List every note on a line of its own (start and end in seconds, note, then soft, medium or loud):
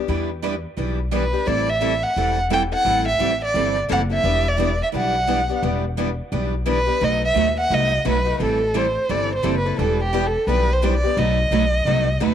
0.08 0.64 E2 medium
0.08 0.29 E3 medium
0.08 0.29 G3 medium
0.08 0.29 B3 medium
0.08 0.29 D4 medium
0.08 0.29 E4 medium
0.08 0.29 G4 medium
0.08 0.29 B4 medium
0.42 0.54 E3 medium
0.42 0.53 G3 medium
0.42 0.54 B3 medium
0.42 0.54 D4 medium
0.42 0.54 E4 medium
0.42 0.54 G4 medium
0.42 0.54 B4 medium
0.77 1.33 B1 medium
0.77 0.98 E3 medium
0.77 0.98 G3 medium
0.77 0.98 B3 medium
0.77 0.99 D4 medium
0.77 0.98 E4 medium
0.77 0.99 G4 medium
0.77 0.98 B4 medium
1.11 1.23 E3 medium
1.11 1.23 G3 medium
1.11 1.23 B3 medium
1.11 1.23 D4 medium
1.11 1.23 E4 medium
1.11 1.23 G4 medium
1.11 1.23 B4 medium
1.11 1.48 B4 medium
1.33 1.47 B3 soft
1.33 1.46 D4 soft
1.33 1.46 G4 soft
1.47 2.02 A1 medium
1.47 1.68 E3 medium
1.47 1.68 G3 medium
1.47 1.68 C4 medium
1.47 1.68 E4 medium
1.47 1.68 A4 medium
1.47 1.71 D5 medium
1.69 2.05 E5 medium
1.81 1.92 E3 medium
1.81 1.93 G3 medium
1.81 1.93 C4 medium
1.81 1.93 E4 medium
1.81 1.93 A4 medium
2.03 2.38 F#5 medium
2.16 2.72 E1 medium
2.16 2.37 E3 medium
2.16 2.37 G3 medium
2.16 2.38 C4 medium
2.16 2.38 E4 medium
2.16 2.38 A4 medium
2.50 2.62 E3 medium
2.50 2.62 G3 medium
2.50 2.62 C4 medium
2.50 2.62 E4 medium
2.50 2.62 A4 medium
2.50 2.62 G5 medium
2.72 2.84 C4 soft
2.72 2.85 E4 soft
2.72 2.85 A4 medium
2.72 3.05 F#5 loud
2.85 3.13 A1 medium
2.85 3.06 E3 medium
2.85 3.06 G3 medium
2.85 3.06 C4 medium
2.85 3.06 E4 medium
2.85 3.07 A4 medium
3.08 3.40 E5 medium
3.19 3.50 A1 medium
3.19 3.31 E3 medium
3.19 3.31 G3 medium
3.19 3.31 C4 medium
3.19 3.31 E4 medium
3.19 3.31 A4 medium
3.45 3.75 D5 medium
3.54 3.84 G1 medium
3.54 3.76 E3 medium
3.54 3.76 G3 medium
3.54 3.76 C4 medium
3.54 3.76 E4 medium
3.54 3.76 A4 medium
3.89 4.19 F#1 medium
3.89 4.00 E3 medium
3.89 4.00 G3 medium
3.89 4.00 C4 medium
3.89 4.00 E4 medium
3.89 4.01 A4 medium
3.89 4.01 F#5 medium
4.10 4.24 C4 soft
4.10 4.24 E4 medium
4.10 4.23 A4 medium
4.14 4.50 E5 medium
4.23 4.79 E1 medium
4.23 4.45 E3 medium
4.23 4.45 G3 medium
4.23 4.45 B3 medium
4.23 4.46 D4 medium
4.23 4.45 E4 medium
4.23 4.45 G4 medium
4.23 4.45 B4 medium
4.48 4.82 D5 medium
4.57 4.70 E3 medium
4.57 4.69 G3 medium
4.57 4.70 B3 medium
4.57 4.70 D4 medium
4.57 4.69 E4 medium
4.57 4.70 G4 medium
4.57 4.69 B4 medium
4.83 4.88 E5 medium
4.92 5.49 B1 medium
4.92 5.14 E3 medium
4.92 5.14 G3 medium
4.92 5.15 B3 medium
4.92 5.15 D4 medium
4.92 5.14 E4 medium
4.92 5.15 G4 medium
4.92 5.14 B4 medium
4.97 5.60 F#5 medium
5.27 5.39 E3 medium
5.27 5.39 G3 medium
5.27 5.39 B3 medium
5.27 5.39 D4 medium
5.27 5.39 E4 medium
5.27 5.40 G4 medium
5.27 5.39 B4 medium
5.49 5.62 B3 soft
5.49 5.62 D4 soft
5.49 5.62 G4 medium
5.62 6.18 E1 medium
5.62 5.84 E3 medium
5.62 5.84 G3 medium
5.62 5.84 B3 medium
5.62 5.84 D4 medium
5.62 5.84 E4 medium
5.62 5.84 G4 medium
5.62 5.84 B4 medium
5.97 6.08 E3 medium
5.97 6.09 G3 medium
5.97 6.09 B3 medium
5.97 6.09 D4 medium
5.97 6.09 E4 medium
5.97 6.09 G4 medium
5.97 6.09 B4 medium
6.32 6.87 B1 medium
6.32 6.53 E3 medium
6.32 6.53 G3 medium
6.32 6.53 B3 medium
6.32 6.53 D4 medium
6.32 6.53 E4 medium
6.32 6.53 G4 medium
6.32 6.53 B4 medium
6.66 6.77 E3 medium
6.66 6.78 G3 medium
6.66 6.77 B3 medium
6.66 6.78 D4 medium
6.66 6.78 E4 medium
6.66 6.78 G4 medium
6.66 6.78 B4 medium
6.71 7.06 B4 medium
6.86 7.00 B3 soft
6.86 7.01 D4 soft
6.86 7.00 G4 medium
7.00 7.29 B1 medium
7.00 7.22 B2 medium
7.00 7.22 F#3 medium
7.00 7.22 A3 medium
7.00 7.22 D#4 medium
7.00 7.22 F#4 medium
7.00 7.23 B4 medium
7.00 7.24 D#5 medium
7.25 7.56 E5 medium
7.35 7.65 D#2 medium
7.35 7.47 B2 medium
7.35 7.47 F#3 medium
7.35 7.47 A3 medium
7.35 7.48 D#4 medium
7.35 7.48 F#4 medium
7.35 7.47 B4 medium
7.60 7.76 F#5 medium
7.70 8.00 C2 medium
7.70 7.91 B2 medium
7.70 7.92 F#3 medium
7.70 7.92 A3 medium
7.70 7.92 D#4 medium
7.70 7.92 F#4 medium
7.70 7.92 B4 medium
7.70 8.07 D#5 medium
8.05 8.35 B1 medium
8.05 8.16 B2 medium
8.05 8.16 F#3 medium
8.05 8.16 A3 medium
8.05 8.16 D#4 medium
8.05 8.16 F#4 medium
8.05 8.17 B4 medium
8.05 8.39 B4 medium
8.25 8.40 A3 soft
8.25 8.39 D#4 soft
8.25 8.39 F#4 medium
8.40 8.95 A1 medium
8.40 8.61 E3 medium
8.40 8.61 G3 medium
8.40 8.61 C4 medium
8.40 8.61 E4 medium
8.40 8.61 A4 medium
8.40 8.78 A4 medium
8.74 8.85 E3 medium
8.74 8.85 G3 medium
8.74 8.86 C4 medium
8.74 8.86 E4 medium
8.74 8.86 A4 medium
8.74 9.12 C5 medium
9.09 9.39 G1 medium
9.09 9.30 E3 medium
9.09 9.30 G3 medium
9.09 9.30 C4 medium
9.09 9.30 E4 medium
9.09 9.30 A4 medium
9.09 9.33 D5 medium
9.35 9.55 C5 medium
9.43 9.73 F#1 medium
9.43 9.54 E3 medium
9.43 9.55 G3 medium
9.43 9.55 C4 medium
9.43 9.55 E4 medium
9.43 9.55 A4 medium
9.58 9.78 B4 medium
9.65 9.79 C4 soft
9.65 9.79 E4 soft
9.65 9.78 A4 medium
9.79 10.34 E1 medium
9.79 9.99 E3 medium
9.79 9.99 G3 medium
9.79 10.00 B3 medium
9.79 10.00 D4 medium
9.79 10.00 E4 medium
9.79 10.00 G4 medium
9.79 10.01 A4 medium
9.79 10.00 B4 medium
10.03 10.28 G4 medium
10.13 10.24 E3 medium
10.13 10.24 G3 medium
10.13 10.25 B3 medium
10.13 10.25 D4 medium
10.13 10.24 E4 medium
10.13 10.25 G4 medium
10.13 10.25 B4 medium
10.27 10.49 A4 medium
10.47 11.03 B1 medium
10.47 10.68 E3 medium
10.47 10.69 G3 medium
10.47 10.69 B3 medium
10.47 10.69 D4 medium
10.47 10.69 E4 medium
10.47 10.69 G4 medium
10.47 10.69 B4 medium
10.47 10.74 B4 medium
10.73 10.95 C5 medium
10.82 10.93 E3 medium
10.82 10.94 G3 medium
10.82 10.93 B3 medium
10.82 10.94 D4 medium
10.82 10.94 E4 medium
10.82 10.94 G4 medium
10.82 10.94 B4 medium
10.97 11.20 D5 medium
11.04 11.17 B3 medium
11.04 11.17 D4 soft
11.04 11.17 G4 medium
11.17 11.45 B1 loud
11.17 11.38 B2 medium
11.17 11.38 F#3 medium
11.17 11.38 A3 medium
11.17 11.38 D#4 medium
11.17 11.38 F#4 medium
11.17 11.39 B4 medium
11.17 12.22 D#5 medium
11.51 11.81 B1 medium
11.51 11.63 B2 medium
11.51 11.63 F#3 medium
11.51 11.63 A3 medium
11.51 11.63 D#4 medium
11.51 11.63 F#4 medium
11.51 11.64 B4 medium
11.85 12.15 C2 medium
11.85 12.07 B2 medium
11.85 12.07 F#3 medium
11.85 12.07 A3 medium
11.85 12.08 D#4 medium
11.85 12.08 F#4 medium
11.85 12.07 B4 medium
12.20 12.34 D#2 medium
12.20 12.32 B2 medium
12.20 12.32 F#3 medium
12.20 12.32 A3 medium
12.20 12.32 D#4 medium
12.20 12.32 F#4 medium
12.20 12.33 B4 medium
12.25 12.34 B4 medium